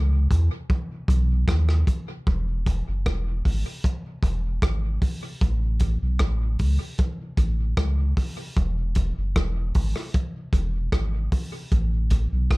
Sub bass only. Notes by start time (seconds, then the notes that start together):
Already playing: C#2
0.31 E2
1.09 B1
1.48 D#2
2.28 E1
2.88 F#1
3.07 E1
3.46 G#1
4.23 E1
4.63 G#1
5.42 A1
6.02 B1
6.21 A1
6.60 C#2
7.38 A1
7.78 C#2
8.58 E1
9.18 F#1
9.37 E1
9.76 G#1
10.53 E1
10.93 G#1
11.72 A1
12.32 B1
12.51 A1